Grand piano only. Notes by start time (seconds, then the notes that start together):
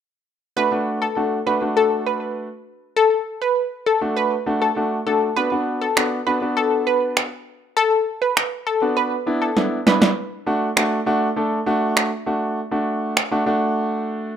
0.56 A3 D4 F#4
0.71 A3 D4 F#4
1.16 A3 D4 F#4
1.46 A3 D4 F#4
1.61 A3 D4 F#4
4.01 A3 D4 F#4
4.46 A3 D4 F#4
4.76 A3 D4 F#4
5.06 A3 D4 F#4
5.36 B3 D4 F#4
5.51 B3 D4 F#4
5.96 B3 D4 F#4
6.26 B3 D4 F#4
6.41 B3 D4 F#4
8.82 B3 D4 F#4
9.26 B3 D4 E4
9.56 B3 D4 E4
9.86 B3 D4 E4
10.46 A3 D4 F#4
10.76 A3 D4 F#4
11.06 A3 D4 F#4
11.36 A3 D4 A4
11.66 A3 D4 F#4
12.26 A3 D4 F#4
12.71 A3 D4 F#4
13.31 A3 D4 F#4
13.46 A3 D4 F#4